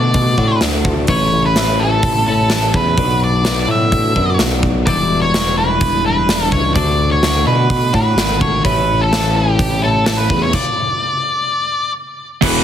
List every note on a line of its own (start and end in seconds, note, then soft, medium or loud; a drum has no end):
0.00 0.13 B2 medium
0.00 0.14 D3 medium
0.00 0.39 A3 soft
0.00 0.38 D4 medium
0.00 0.37 F#4 medium
0.00 0.57 D5 medium
0.14 0.36 B2 medium
0.14 kick loud
0.14 open hi-hat soft
0.38 0.60 A2 medium
0.38 0.61 A3 medium
0.38 0.62 D4 medium
0.38 0.63 F#4 medium
0.38 kick medium
0.61 1.05 D2 medium
0.61 1.07 D3 medium
0.61 1.08 A3 medium
0.61 1.08 D4 medium
0.61 1.08 F#4 medium
0.61 snare loud
0.61 open hi-hat soft
0.85 kick medium
1.07 1.30 A1 medium
1.07 1.54 A2 medium
1.07 1.55 E3 medium
1.07 1.55 A3 medium
1.07 1.56 C#4 medium
1.07 1.56 E4 medium
1.07 1.42 C#5 medium
1.07 kick loud
1.07 open hi-hat soft
1.32 1.54 A1 medium
1.46 1.81 B4 medium
1.55 1.77 A1 medium
1.55 2.03 A2 medium
1.55 2.03 E3 medium
1.55 1.81 A3 medium
1.55 1.80 C#4 medium
1.55 1.79 E4 medium
1.55 snare loud
1.55 open hi-hat soft
1.80 2.02 A1 medium
1.80 2.28 A3 soft
1.80 2.27 C#4 medium
1.80 2.26 E4 medium
1.80 2.27 A4 medium
2.03 2.25 A1 medium
2.03 kick loud
2.03 open hi-hat soft
2.27 2.49 A1 medium
2.27 2.50 A3 soft
2.27 2.50 C#4 medium
2.27 2.51 E4 medium
2.27 2.71 A4 medium
2.50 2.72 A1 medium
2.50 2.96 E3 medium
2.50 2.96 A3 medium
2.50 2.97 C#4 medium
2.50 2.97 E4 medium
2.50 snare loud
2.50 open hi-hat soft
2.74 2.96 E2 medium
2.74 3.19 B4 medium
2.74 kick medium
2.97 3.20 B1 medium
2.97 3.44 B2 medium
2.97 3.44 F#3 medium
2.97 3.46 B3 medium
2.97 3.46 D4 medium
2.97 3.46 F#4 medium
2.97 kick medium
2.97 open hi-hat soft
3.21 3.43 B1 medium
3.21 3.59 D5 medium
3.45 3.67 B1 medium
3.45 3.92 B2 medium
3.45 3.92 F#3 medium
3.45 3.71 B3 medium
3.45 3.69 D4 medium
3.45 3.67 F#4 medium
3.45 snare loud
3.45 open hi-hat soft
3.61 3.68 D5 medium
3.68 3.90 A2 medium
3.68 4.17 B3 soft
3.68 4.16 D4 medium
3.68 4.15 F#4 medium
3.68 4.36 E5 medium
3.92 4.14 A2 medium
3.92 kick medium
3.92 open hi-hat soft
4.16 4.38 F#2 medium
4.16 4.40 B3 soft
4.16 4.41 D4 medium
4.16 4.41 F#4 medium
4.16 kick medium
4.39 4.88 B1 medium
4.39 4.85 F#3 medium
4.39 4.86 B3 medium
4.39 4.89 D4 medium
4.39 4.87 F#4 medium
4.39 snare loud
4.39 open hi-hat soft
4.63 kick medium
4.86 5.08 E1 medium
4.86 5.33 E2 medium
4.86 5.34 B2 medium
4.86 5.34 E3 medium
4.86 5.34 G3 medium
4.86 5.35 D4 medium
4.86 5.35 E4 medium
4.86 5.19 D5 medium
4.86 kick medium
4.86 open hi-hat soft
5.09 5.31 E1 medium
5.22 5.57 C#5 medium
5.33 5.55 E1 medium
5.33 5.81 E2 medium
5.33 5.81 B2 medium
5.33 5.58 E3 medium
5.33 5.58 G3 medium
5.33 5.58 D4 medium
5.33 5.56 E4 medium
5.33 snare medium
5.33 open hi-hat soft
5.57 5.79 E1 medium
5.57 6.06 E3 soft
5.57 6.05 G3 medium
5.57 6.05 D4 medium
5.57 6.04 E4 medium
5.57 6.05 B4 medium
5.81 6.03 E1 medium
5.81 kick loud
5.81 open hi-hat soft
6.04 6.26 E1 medium
6.04 6.27 E3 medium
6.04 6.28 G3 medium
6.04 6.29 D4 medium
6.04 6.29 E4 medium
6.04 6.51 B4 medium
6.28 6.50 E1 medium
6.28 6.74 E3 medium
6.28 6.74 G3 medium
6.28 6.75 D4 medium
6.28 6.75 E4 medium
6.28 snare loud
6.28 open hi-hat medium
6.51 6.74 C#2 medium
6.51 6.74 C#5 medium
6.51 kick medium
6.74 6.97 D2 medium
6.74 7.21 D3 medium
6.74 7.23 A3 medium
6.74 7.23 D4 medium
6.74 7.23 F#4 medium
6.74 7.11 D5 medium
6.74 kick loud
6.74 open hi-hat soft
6.98 7.21 D2 medium
7.11 7.46 C#5 medium
7.22 7.45 D2 medium
7.22 7.70 D3 medium
7.22 7.48 A3 medium
7.22 7.46 D4 medium
7.22 7.45 F#4 medium
7.22 snare loud
7.22 open hi-hat soft
7.46 7.69 B2 medium
7.46 7.94 A3 soft
7.46 7.92 D4 soft
7.46 7.92 F#4 medium
7.46 7.93 B4 medium
7.70 7.92 B2 medium
7.70 kick loud
7.70 open hi-hat soft
7.93 8.15 A2 medium
7.93 8.16 A3 medium
7.93 8.17 D4 medium
7.93 8.17 F#4 medium
7.93 8.41 B4 medium
7.93 kick medium
8.16 8.61 G#1 medium
8.16 8.63 D3 medium
8.16 8.63 A3 medium
8.16 8.64 D4 medium
8.16 8.64 F#4 medium
8.16 snare loud
8.16 open hi-hat soft
8.41 8.64 C#5 medium
8.41 kick medium
8.64 8.87 A1 medium
8.64 9.10 A2 medium
8.64 9.11 E3 medium
8.64 9.11 A3 medium
8.64 9.12 C#4 medium
8.64 9.12 E4 medium
8.64 9.01 B4 medium
8.64 kick medium
8.64 open hi-hat soft
8.88 9.10 A1 medium
9.01 9.36 A4 medium
9.11 9.33 A1 medium
9.11 9.59 A2 medium
9.11 9.59 E3 medium
9.11 9.36 A3 medium
9.11 9.34 C#4 medium
9.11 9.33 E4 loud
9.11 snare loud
9.11 open hi-hat soft
9.34 9.57 A1 medium
9.34 9.83 A3 medium
9.34 9.82 C#4 medium
9.34 9.81 E4 medium
9.34 9.83 G4 medium
9.59 9.81 A1 medium
9.59 kick medium
9.59 open hi-hat soft
9.82 10.05 A1 medium
9.82 10.06 A3 medium
9.82 10.06 C#4 medium
9.82 10.07 E4 medium
9.82 10.05 A4 medium
10.06 10.29 A1 medium
10.06 10.52 E3 medium
10.06 10.53 A3 medium
10.06 10.53 C#4 medium
10.06 10.53 E4 medium
10.06 10.17 A4 medium
10.06 snare loud
10.06 open hi-hat soft
10.17 10.42 B4 medium
10.29 10.52 E2 medium
10.29 kick medium
10.42 10.53 C#5 medium
10.53 11.91 D5 medium
10.53 kick medium
10.53 crash medium
12.42 12.64 E1 loud
12.42 12.64 E2 loud
12.42 12.64 B2 loud
12.42 12.64 E3 loud
12.42 12.64 B4 medium
12.42 kick loud
12.42 crash loud
12.42 crash medium